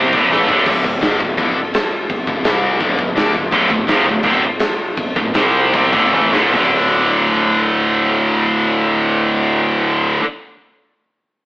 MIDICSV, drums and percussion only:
0, 0, Header, 1, 2, 480
1, 0, Start_track
1, 0, Key_signature, -1, "minor"
1, 0, Tempo, 355240
1, 915, Time_signature, 4, 2, 24, 8
1, 5234, Tempo, 367647
1, 7154, Tempo, 398406
1, 8594, Tempo, 417246
1, 14247, End_track
2, 0, Start_track
2, 0, Title_t, "Drums"
2, 177, Note_on_c, 9, 36, 119
2, 312, Note_off_c, 9, 36, 0
2, 435, Note_on_c, 9, 38, 74
2, 570, Note_off_c, 9, 38, 0
2, 659, Note_on_c, 9, 36, 93
2, 794, Note_off_c, 9, 36, 0
2, 888, Note_on_c, 9, 49, 127
2, 888, Note_on_c, 9, 57, 70
2, 897, Note_on_c, 9, 36, 109
2, 1023, Note_off_c, 9, 49, 0
2, 1023, Note_off_c, 9, 57, 0
2, 1032, Note_off_c, 9, 36, 0
2, 1140, Note_on_c, 9, 36, 93
2, 1275, Note_off_c, 9, 36, 0
2, 1376, Note_on_c, 9, 57, 72
2, 1389, Note_on_c, 9, 38, 125
2, 1511, Note_off_c, 9, 57, 0
2, 1524, Note_off_c, 9, 38, 0
2, 1626, Note_on_c, 9, 36, 98
2, 1761, Note_off_c, 9, 36, 0
2, 1864, Note_on_c, 9, 57, 65
2, 1867, Note_on_c, 9, 36, 116
2, 1999, Note_off_c, 9, 57, 0
2, 2002, Note_off_c, 9, 36, 0
2, 2349, Note_on_c, 9, 57, 71
2, 2362, Note_on_c, 9, 38, 125
2, 2484, Note_off_c, 9, 57, 0
2, 2497, Note_off_c, 9, 38, 0
2, 2834, Note_on_c, 9, 36, 108
2, 2837, Note_on_c, 9, 57, 70
2, 2969, Note_off_c, 9, 36, 0
2, 2972, Note_off_c, 9, 57, 0
2, 3071, Note_on_c, 9, 36, 102
2, 3206, Note_off_c, 9, 36, 0
2, 3300, Note_on_c, 9, 57, 67
2, 3313, Note_on_c, 9, 38, 122
2, 3435, Note_off_c, 9, 57, 0
2, 3448, Note_off_c, 9, 38, 0
2, 3791, Note_on_c, 9, 57, 61
2, 3792, Note_on_c, 9, 36, 103
2, 3926, Note_off_c, 9, 57, 0
2, 3927, Note_off_c, 9, 36, 0
2, 4037, Note_on_c, 9, 36, 97
2, 4172, Note_off_c, 9, 36, 0
2, 4280, Note_on_c, 9, 57, 67
2, 4294, Note_on_c, 9, 38, 116
2, 4416, Note_off_c, 9, 57, 0
2, 4429, Note_off_c, 9, 38, 0
2, 4520, Note_on_c, 9, 36, 95
2, 4655, Note_off_c, 9, 36, 0
2, 4761, Note_on_c, 9, 36, 109
2, 4768, Note_on_c, 9, 57, 65
2, 4896, Note_off_c, 9, 36, 0
2, 4903, Note_off_c, 9, 57, 0
2, 4999, Note_on_c, 9, 36, 101
2, 5134, Note_off_c, 9, 36, 0
2, 5245, Note_on_c, 9, 57, 66
2, 5258, Note_on_c, 9, 38, 123
2, 5375, Note_off_c, 9, 57, 0
2, 5388, Note_off_c, 9, 38, 0
2, 5472, Note_on_c, 9, 36, 95
2, 5603, Note_off_c, 9, 36, 0
2, 5697, Note_on_c, 9, 57, 66
2, 5710, Note_on_c, 9, 36, 110
2, 5828, Note_off_c, 9, 57, 0
2, 5840, Note_off_c, 9, 36, 0
2, 6174, Note_on_c, 9, 57, 73
2, 6187, Note_on_c, 9, 38, 119
2, 6305, Note_off_c, 9, 57, 0
2, 6318, Note_off_c, 9, 38, 0
2, 6664, Note_on_c, 9, 57, 70
2, 6672, Note_on_c, 9, 36, 115
2, 6795, Note_off_c, 9, 57, 0
2, 6803, Note_off_c, 9, 36, 0
2, 6915, Note_on_c, 9, 36, 101
2, 7046, Note_off_c, 9, 36, 0
2, 7150, Note_on_c, 9, 57, 72
2, 7162, Note_on_c, 9, 38, 121
2, 7271, Note_off_c, 9, 57, 0
2, 7283, Note_off_c, 9, 38, 0
2, 7622, Note_on_c, 9, 57, 68
2, 7628, Note_on_c, 9, 36, 108
2, 7742, Note_off_c, 9, 57, 0
2, 7748, Note_off_c, 9, 36, 0
2, 7860, Note_on_c, 9, 36, 116
2, 7981, Note_off_c, 9, 36, 0
2, 8103, Note_on_c, 9, 36, 67
2, 8223, Note_off_c, 9, 36, 0
2, 8346, Note_on_c, 9, 38, 93
2, 8467, Note_off_c, 9, 38, 0
2, 8590, Note_on_c, 9, 36, 107
2, 8590, Note_on_c, 9, 43, 105
2, 8590, Note_on_c, 9, 46, 89
2, 8705, Note_off_c, 9, 36, 0
2, 8705, Note_off_c, 9, 43, 0
2, 8705, Note_off_c, 9, 46, 0
2, 14247, End_track
0, 0, End_of_file